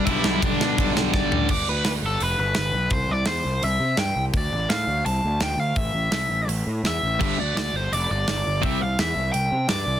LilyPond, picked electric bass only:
\new Staff \with { instrumentName = "Picked electric bass" } { \clef bass \time 4/4 \key g \mixolydian \tempo 4 = 168 b,,8 b,,8 b,,8 b,8 b,,8 b,,8 b,,8 a,,8 | g,,8 d,8 d,8 g,,8 f,,8 g,,8 g,,8 b,,8 | c,8 c,8 e,8 c,8 c,8 c8 g,8 c,8 | d,8 a,,8 a,8 d,8 c,8 d,8 d,8 d,8 |
a,,8 a,,8 c,8 a,,8 a,,8 a,8 e,8 a,,8 | g,,8 d,8 d,8 g,,8 f,,8 g,,8 g,,8 g,,8 | c,8 c,8 e,8 c,8 c,8 c8 g,8 c,8 | }